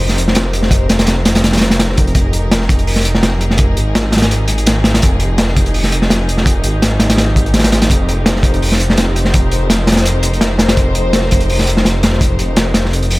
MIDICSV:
0, 0, Header, 1, 4, 480
1, 0, Start_track
1, 0, Key_signature, -4, "minor"
1, 0, Tempo, 359281
1, 955, Time_signature, 4, 2, 24, 8
1, 17626, End_track
2, 0, Start_track
2, 0, Title_t, "String section"
2, 0, Program_c, 0, 48
2, 0, Note_on_c, 0, 63, 85
2, 0, Note_on_c, 0, 67, 78
2, 0, Note_on_c, 0, 70, 78
2, 0, Note_on_c, 0, 72, 92
2, 2821, Note_off_c, 0, 72, 0
2, 2825, Note_off_c, 0, 63, 0
2, 2825, Note_off_c, 0, 67, 0
2, 2881, Note_on_c, 0, 67, 78
2, 2881, Note_on_c, 0, 68, 79
2, 2882, Note_on_c, 0, 63, 86
2, 10499, Note_off_c, 0, 70, 0
2, 10505, Note_off_c, 0, 68, 0
2, 10553, Note_on_c, 0, 70, 80
2, 10553, Note_on_c, 0, 72, 96
2, 17626, Note_off_c, 0, 63, 0
2, 17626, Note_off_c, 0, 67, 0
2, 17626, Note_off_c, 0, 70, 0
2, 17626, Note_off_c, 0, 72, 0
2, 17626, End_track
3, 0, Start_track
3, 0, Title_t, "Detuned saw bass"
3, 0, Program_c, 1, 39
3, 0, Note_on_c, 1, 29, 100
3, 1180, Note_off_c, 1, 29, 0
3, 1195, Note_on_c, 1, 29, 93
3, 2857, Note_off_c, 1, 29, 0
3, 2873, Note_on_c, 1, 29, 102
3, 5032, Note_on_c, 1, 32, 96
3, 5052, Note_off_c, 1, 29, 0
3, 6696, Note_off_c, 1, 32, 0
3, 6721, Note_on_c, 1, 29, 104
3, 8874, Note_on_c, 1, 32, 90
3, 8894, Note_off_c, 1, 29, 0
3, 10537, Note_off_c, 1, 32, 0
3, 10552, Note_on_c, 1, 29, 102
3, 12696, Note_off_c, 1, 29, 0
3, 12715, Note_on_c, 1, 29, 94
3, 14377, Note_off_c, 1, 29, 0
3, 14391, Note_on_c, 1, 29, 98
3, 16535, Note_off_c, 1, 29, 0
3, 16554, Note_on_c, 1, 29, 89
3, 17626, Note_off_c, 1, 29, 0
3, 17626, End_track
4, 0, Start_track
4, 0, Title_t, "Drums"
4, 118, Note_on_c, 9, 38, 39
4, 240, Note_on_c, 9, 42, 65
4, 252, Note_off_c, 9, 38, 0
4, 370, Note_on_c, 9, 38, 49
4, 374, Note_off_c, 9, 42, 0
4, 468, Note_on_c, 9, 42, 91
4, 488, Note_off_c, 9, 38, 0
4, 488, Note_on_c, 9, 38, 127
4, 601, Note_off_c, 9, 42, 0
4, 622, Note_off_c, 9, 38, 0
4, 713, Note_on_c, 9, 42, 75
4, 834, Note_on_c, 9, 38, 49
4, 847, Note_off_c, 9, 42, 0
4, 947, Note_on_c, 9, 36, 105
4, 954, Note_on_c, 9, 42, 90
4, 967, Note_off_c, 9, 38, 0
4, 1080, Note_off_c, 9, 36, 0
4, 1088, Note_off_c, 9, 42, 0
4, 1194, Note_on_c, 9, 42, 82
4, 1199, Note_on_c, 9, 38, 98
4, 1322, Note_off_c, 9, 42, 0
4, 1322, Note_on_c, 9, 42, 80
4, 1325, Note_off_c, 9, 38, 0
4, 1325, Note_on_c, 9, 38, 110
4, 1425, Note_off_c, 9, 42, 0
4, 1425, Note_on_c, 9, 42, 80
4, 1439, Note_off_c, 9, 38, 0
4, 1439, Note_on_c, 9, 38, 107
4, 1559, Note_off_c, 9, 42, 0
4, 1573, Note_off_c, 9, 38, 0
4, 1674, Note_on_c, 9, 42, 87
4, 1677, Note_on_c, 9, 38, 115
4, 1806, Note_off_c, 9, 42, 0
4, 1806, Note_on_c, 9, 42, 77
4, 1811, Note_off_c, 9, 38, 0
4, 1812, Note_on_c, 9, 38, 100
4, 1922, Note_off_c, 9, 42, 0
4, 1922, Note_on_c, 9, 42, 83
4, 1923, Note_off_c, 9, 38, 0
4, 1923, Note_on_c, 9, 38, 105
4, 2040, Note_off_c, 9, 38, 0
4, 2040, Note_on_c, 9, 38, 89
4, 2046, Note_off_c, 9, 42, 0
4, 2046, Note_on_c, 9, 42, 69
4, 2099, Note_off_c, 9, 38, 0
4, 2099, Note_on_c, 9, 38, 90
4, 2101, Note_off_c, 9, 42, 0
4, 2101, Note_on_c, 9, 42, 74
4, 2155, Note_off_c, 9, 38, 0
4, 2155, Note_on_c, 9, 38, 116
4, 2159, Note_off_c, 9, 42, 0
4, 2159, Note_on_c, 9, 42, 78
4, 2277, Note_off_c, 9, 38, 0
4, 2277, Note_on_c, 9, 38, 101
4, 2289, Note_off_c, 9, 42, 0
4, 2289, Note_on_c, 9, 42, 73
4, 2397, Note_off_c, 9, 38, 0
4, 2397, Note_on_c, 9, 38, 117
4, 2400, Note_off_c, 9, 42, 0
4, 2400, Note_on_c, 9, 42, 91
4, 2525, Note_off_c, 9, 38, 0
4, 2525, Note_on_c, 9, 38, 40
4, 2534, Note_off_c, 9, 42, 0
4, 2637, Note_on_c, 9, 42, 63
4, 2644, Note_on_c, 9, 36, 84
4, 2658, Note_off_c, 9, 38, 0
4, 2770, Note_off_c, 9, 42, 0
4, 2770, Note_on_c, 9, 42, 37
4, 2778, Note_off_c, 9, 36, 0
4, 2870, Note_off_c, 9, 42, 0
4, 2870, Note_on_c, 9, 42, 80
4, 2873, Note_on_c, 9, 36, 119
4, 3003, Note_off_c, 9, 42, 0
4, 3007, Note_off_c, 9, 36, 0
4, 3114, Note_on_c, 9, 42, 60
4, 3248, Note_off_c, 9, 42, 0
4, 3360, Note_on_c, 9, 38, 113
4, 3360, Note_on_c, 9, 42, 82
4, 3487, Note_off_c, 9, 38, 0
4, 3487, Note_on_c, 9, 38, 44
4, 3494, Note_off_c, 9, 42, 0
4, 3598, Note_on_c, 9, 36, 107
4, 3605, Note_on_c, 9, 42, 66
4, 3620, Note_off_c, 9, 38, 0
4, 3724, Note_off_c, 9, 42, 0
4, 3724, Note_on_c, 9, 42, 44
4, 3731, Note_off_c, 9, 36, 0
4, 3839, Note_on_c, 9, 46, 90
4, 3858, Note_off_c, 9, 42, 0
4, 3954, Note_on_c, 9, 38, 41
4, 3972, Note_off_c, 9, 46, 0
4, 4074, Note_on_c, 9, 42, 65
4, 4088, Note_off_c, 9, 38, 0
4, 4203, Note_on_c, 9, 38, 51
4, 4208, Note_off_c, 9, 42, 0
4, 4313, Note_off_c, 9, 38, 0
4, 4313, Note_on_c, 9, 38, 112
4, 4315, Note_on_c, 9, 42, 88
4, 4446, Note_off_c, 9, 38, 0
4, 4449, Note_off_c, 9, 42, 0
4, 4553, Note_on_c, 9, 42, 70
4, 4683, Note_on_c, 9, 38, 44
4, 4686, Note_off_c, 9, 42, 0
4, 4780, Note_on_c, 9, 42, 87
4, 4795, Note_on_c, 9, 36, 108
4, 4817, Note_off_c, 9, 38, 0
4, 4913, Note_off_c, 9, 42, 0
4, 4928, Note_off_c, 9, 36, 0
4, 5035, Note_on_c, 9, 42, 66
4, 5168, Note_off_c, 9, 42, 0
4, 5279, Note_on_c, 9, 42, 87
4, 5280, Note_on_c, 9, 38, 121
4, 5412, Note_off_c, 9, 42, 0
4, 5414, Note_off_c, 9, 38, 0
4, 5507, Note_on_c, 9, 38, 80
4, 5512, Note_on_c, 9, 42, 69
4, 5570, Note_off_c, 9, 38, 0
4, 5570, Note_on_c, 9, 38, 90
4, 5582, Note_off_c, 9, 42, 0
4, 5582, Note_on_c, 9, 42, 63
4, 5640, Note_off_c, 9, 38, 0
4, 5640, Note_on_c, 9, 38, 123
4, 5642, Note_off_c, 9, 42, 0
4, 5642, Note_on_c, 9, 42, 82
4, 5759, Note_off_c, 9, 42, 0
4, 5759, Note_on_c, 9, 42, 86
4, 5774, Note_off_c, 9, 38, 0
4, 5893, Note_off_c, 9, 42, 0
4, 5981, Note_on_c, 9, 42, 71
4, 6114, Note_off_c, 9, 42, 0
4, 6117, Note_on_c, 9, 42, 43
4, 6232, Note_off_c, 9, 42, 0
4, 6232, Note_on_c, 9, 42, 89
4, 6243, Note_on_c, 9, 38, 120
4, 6365, Note_off_c, 9, 42, 0
4, 6377, Note_off_c, 9, 38, 0
4, 6467, Note_on_c, 9, 38, 117
4, 6479, Note_on_c, 9, 42, 77
4, 6600, Note_off_c, 9, 38, 0
4, 6604, Note_on_c, 9, 38, 107
4, 6610, Note_off_c, 9, 42, 0
4, 6610, Note_on_c, 9, 42, 83
4, 6709, Note_off_c, 9, 42, 0
4, 6709, Note_on_c, 9, 42, 90
4, 6722, Note_on_c, 9, 36, 117
4, 6738, Note_off_c, 9, 38, 0
4, 6842, Note_off_c, 9, 42, 0
4, 6856, Note_off_c, 9, 36, 0
4, 6944, Note_on_c, 9, 42, 70
4, 7077, Note_off_c, 9, 42, 0
4, 7188, Note_on_c, 9, 42, 93
4, 7191, Note_on_c, 9, 38, 127
4, 7315, Note_off_c, 9, 38, 0
4, 7315, Note_on_c, 9, 38, 43
4, 7321, Note_off_c, 9, 42, 0
4, 7434, Note_on_c, 9, 42, 69
4, 7435, Note_on_c, 9, 36, 95
4, 7449, Note_off_c, 9, 38, 0
4, 7561, Note_off_c, 9, 42, 0
4, 7561, Note_on_c, 9, 42, 47
4, 7568, Note_off_c, 9, 36, 0
4, 7671, Note_on_c, 9, 46, 83
4, 7695, Note_off_c, 9, 42, 0
4, 7799, Note_on_c, 9, 38, 43
4, 7805, Note_off_c, 9, 46, 0
4, 7912, Note_on_c, 9, 42, 71
4, 7932, Note_off_c, 9, 38, 0
4, 8042, Note_on_c, 9, 38, 51
4, 8046, Note_off_c, 9, 42, 0
4, 8154, Note_off_c, 9, 38, 0
4, 8154, Note_on_c, 9, 38, 125
4, 8161, Note_on_c, 9, 42, 87
4, 8288, Note_off_c, 9, 38, 0
4, 8295, Note_off_c, 9, 42, 0
4, 8401, Note_on_c, 9, 42, 66
4, 8516, Note_on_c, 9, 38, 47
4, 8534, Note_off_c, 9, 42, 0
4, 8629, Note_on_c, 9, 36, 106
4, 8639, Note_on_c, 9, 42, 96
4, 8650, Note_off_c, 9, 38, 0
4, 8762, Note_off_c, 9, 36, 0
4, 8773, Note_off_c, 9, 42, 0
4, 8866, Note_on_c, 9, 42, 68
4, 8999, Note_off_c, 9, 42, 0
4, 9116, Note_on_c, 9, 38, 110
4, 9118, Note_on_c, 9, 42, 97
4, 9249, Note_off_c, 9, 38, 0
4, 9252, Note_off_c, 9, 42, 0
4, 9347, Note_on_c, 9, 38, 95
4, 9351, Note_on_c, 9, 42, 83
4, 9480, Note_off_c, 9, 38, 0
4, 9481, Note_on_c, 9, 38, 106
4, 9482, Note_off_c, 9, 42, 0
4, 9482, Note_on_c, 9, 42, 89
4, 9586, Note_off_c, 9, 38, 0
4, 9586, Note_on_c, 9, 38, 123
4, 9596, Note_off_c, 9, 42, 0
4, 9596, Note_on_c, 9, 42, 85
4, 9719, Note_off_c, 9, 38, 0
4, 9729, Note_off_c, 9, 42, 0
4, 9834, Note_on_c, 9, 36, 93
4, 9839, Note_on_c, 9, 42, 70
4, 9968, Note_off_c, 9, 36, 0
4, 9968, Note_off_c, 9, 42, 0
4, 9968, Note_on_c, 9, 42, 39
4, 10070, Note_off_c, 9, 42, 0
4, 10070, Note_on_c, 9, 38, 94
4, 10070, Note_on_c, 9, 42, 66
4, 10141, Note_off_c, 9, 38, 0
4, 10141, Note_on_c, 9, 38, 98
4, 10144, Note_off_c, 9, 42, 0
4, 10144, Note_on_c, 9, 42, 65
4, 10207, Note_off_c, 9, 38, 0
4, 10207, Note_on_c, 9, 38, 101
4, 10212, Note_off_c, 9, 42, 0
4, 10212, Note_on_c, 9, 42, 88
4, 10317, Note_off_c, 9, 42, 0
4, 10317, Note_on_c, 9, 42, 84
4, 10319, Note_off_c, 9, 38, 0
4, 10319, Note_on_c, 9, 38, 104
4, 10444, Note_off_c, 9, 42, 0
4, 10444, Note_on_c, 9, 42, 82
4, 10448, Note_off_c, 9, 38, 0
4, 10448, Note_on_c, 9, 38, 103
4, 10553, Note_on_c, 9, 36, 112
4, 10562, Note_off_c, 9, 42, 0
4, 10562, Note_on_c, 9, 42, 96
4, 10582, Note_off_c, 9, 38, 0
4, 10687, Note_off_c, 9, 36, 0
4, 10695, Note_off_c, 9, 42, 0
4, 10803, Note_on_c, 9, 42, 73
4, 10937, Note_off_c, 9, 42, 0
4, 11033, Note_on_c, 9, 38, 126
4, 11036, Note_on_c, 9, 42, 93
4, 11167, Note_off_c, 9, 38, 0
4, 11170, Note_off_c, 9, 42, 0
4, 11170, Note_on_c, 9, 38, 47
4, 11263, Note_on_c, 9, 36, 92
4, 11271, Note_on_c, 9, 42, 73
4, 11304, Note_off_c, 9, 38, 0
4, 11397, Note_off_c, 9, 36, 0
4, 11405, Note_off_c, 9, 42, 0
4, 11406, Note_on_c, 9, 42, 47
4, 11522, Note_on_c, 9, 46, 91
4, 11540, Note_off_c, 9, 42, 0
4, 11648, Note_on_c, 9, 38, 46
4, 11655, Note_off_c, 9, 46, 0
4, 11756, Note_on_c, 9, 42, 77
4, 11781, Note_off_c, 9, 38, 0
4, 11887, Note_on_c, 9, 38, 56
4, 11890, Note_off_c, 9, 42, 0
4, 11991, Note_on_c, 9, 42, 89
4, 11996, Note_off_c, 9, 38, 0
4, 11996, Note_on_c, 9, 38, 127
4, 12124, Note_off_c, 9, 42, 0
4, 12130, Note_off_c, 9, 38, 0
4, 12238, Note_on_c, 9, 42, 72
4, 12357, Note_on_c, 9, 38, 45
4, 12372, Note_off_c, 9, 42, 0
4, 12474, Note_on_c, 9, 42, 87
4, 12480, Note_on_c, 9, 36, 105
4, 12491, Note_off_c, 9, 38, 0
4, 12608, Note_off_c, 9, 42, 0
4, 12614, Note_off_c, 9, 36, 0
4, 12712, Note_on_c, 9, 42, 70
4, 12846, Note_off_c, 9, 42, 0
4, 12957, Note_on_c, 9, 38, 118
4, 12962, Note_on_c, 9, 42, 92
4, 13090, Note_off_c, 9, 38, 0
4, 13095, Note_off_c, 9, 42, 0
4, 13189, Note_on_c, 9, 38, 86
4, 13191, Note_on_c, 9, 42, 72
4, 13253, Note_off_c, 9, 42, 0
4, 13253, Note_on_c, 9, 42, 67
4, 13256, Note_off_c, 9, 38, 0
4, 13256, Note_on_c, 9, 38, 85
4, 13310, Note_off_c, 9, 38, 0
4, 13310, Note_on_c, 9, 38, 115
4, 13322, Note_off_c, 9, 42, 0
4, 13322, Note_on_c, 9, 42, 79
4, 13433, Note_off_c, 9, 42, 0
4, 13433, Note_on_c, 9, 42, 96
4, 13443, Note_off_c, 9, 38, 0
4, 13567, Note_off_c, 9, 42, 0
4, 13664, Note_on_c, 9, 42, 66
4, 13797, Note_off_c, 9, 42, 0
4, 13807, Note_on_c, 9, 42, 45
4, 13907, Note_on_c, 9, 38, 119
4, 13912, Note_off_c, 9, 42, 0
4, 13912, Note_on_c, 9, 42, 84
4, 14040, Note_off_c, 9, 38, 0
4, 14045, Note_off_c, 9, 42, 0
4, 14144, Note_on_c, 9, 38, 99
4, 14151, Note_on_c, 9, 42, 80
4, 14277, Note_off_c, 9, 38, 0
4, 14277, Note_on_c, 9, 38, 106
4, 14282, Note_off_c, 9, 42, 0
4, 14282, Note_on_c, 9, 42, 90
4, 14388, Note_off_c, 9, 42, 0
4, 14388, Note_on_c, 9, 42, 84
4, 14391, Note_on_c, 9, 36, 105
4, 14410, Note_off_c, 9, 38, 0
4, 14522, Note_off_c, 9, 42, 0
4, 14525, Note_off_c, 9, 36, 0
4, 14628, Note_on_c, 9, 42, 66
4, 14761, Note_off_c, 9, 42, 0
4, 14872, Note_on_c, 9, 38, 119
4, 14873, Note_on_c, 9, 42, 86
4, 14988, Note_off_c, 9, 38, 0
4, 14988, Note_on_c, 9, 38, 50
4, 15007, Note_off_c, 9, 42, 0
4, 15112, Note_on_c, 9, 42, 71
4, 15122, Note_off_c, 9, 38, 0
4, 15127, Note_on_c, 9, 36, 86
4, 15235, Note_off_c, 9, 42, 0
4, 15235, Note_on_c, 9, 42, 46
4, 15260, Note_off_c, 9, 36, 0
4, 15358, Note_on_c, 9, 46, 89
4, 15369, Note_off_c, 9, 42, 0
4, 15484, Note_on_c, 9, 38, 41
4, 15491, Note_off_c, 9, 46, 0
4, 15594, Note_on_c, 9, 42, 76
4, 15617, Note_off_c, 9, 38, 0
4, 15724, Note_on_c, 9, 38, 55
4, 15727, Note_off_c, 9, 42, 0
4, 15835, Note_off_c, 9, 38, 0
4, 15835, Note_on_c, 9, 38, 115
4, 15843, Note_on_c, 9, 42, 85
4, 15968, Note_off_c, 9, 38, 0
4, 15976, Note_off_c, 9, 42, 0
4, 16072, Note_on_c, 9, 42, 78
4, 16080, Note_on_c, 9, 38, 114
4, 16204, Note_off_c, 9, 38, 0
4, 16204, Note_on_c, 9, 38, 48
4, 16205, Note_off_c, 9, 42, 0
4, 16312, Note_on_c, 9, 36, 114
4, 16315, Note_on_c, 9, 42, 87
4, 16337, Note_off_c, 9, 38, 0
4, 16446, Note_off_c, 9, 36, 0
4, 16449, Note_off_c, 9, 42, 0
4, 16551, Note_on_c, 9, 42, 72
4, 16685, Note_off_c, 9, 42, 0
4, 16786, Note_on_c, 9, 42, 83
4, 16792, Note_on_c, 9, 38, 110
4, 16920, Note_off_c, 9, 42, 0
4, 16926, Note_off_c, 9, 38, 0
4, 17023, Note_on_c, 9, 38, 97
4, 17027, Note_on_c, 9, 42, 77
4, 17156, Note_off_c, 9, 38, 0
4, 17161, Note_off_c, 9, 42, 0
4, 17169, Note_on_c, 9, 38, 44
4, 17278, Note_on_c, 9, 42, 61
4, 17303, Note_off_c, 9, 38, 0
4, 17402, Note_off_c, 9, 42, 0
4, 17402, Note_on_c, 9, 42, 42
4, 17508, Note_on_c, 9, 46, 78
4, 17535, Note_off_c, 9, 42, 0
4, 17626, Note_off_c, 9, 46, 0
4, 17626, End_track
0, 0, End_of_file